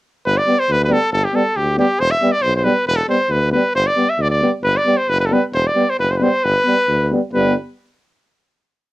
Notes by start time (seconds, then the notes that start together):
0.25 G1 B4
0.37 D5
0.46 G3 B3
0.59 C5
0.69 D2 B4
0.84 B4
0.88 G3 B3 A4
1.11 G1 A4
1.24 G4
1.33 G3 B3 A4
1.56 D2 G4
1.77 G3 B3 G4
2.00 E1 C5
2.11 E5
2.22 G3 B3
2.32 D5
2.42 B1 C5
2.56 C5
2.64 G3 B3 B4
2.87 E1 B4
2.96 A4
3.08 G3 B3 C5
3.29 D2 B4
3.52 G3 B3 B4
3.74 G1 C5
3.87 D5
3.97 G3 B3
4.10 E5
4.18 D2 D5
4.31 D5
4.42 G3 B3
4.63 G1 B4
4.77 D5
4.85 G3 B3
4.97 C5
5.08 F#1 B4
5.20 B4
5.26 A4
5.31 G3 B3 B4
5.53 E1 C5
5.67 D5
5.75 G3 B3
5.90 C5
5.98 F#1 B4
6.11 C5
6.17 G3 B3 B4
6.23 C5
6.44 G1 B4
6.65 G3 B3
6.88 D2
7.12 G3 B3
7.33 G1 G3 B3 B4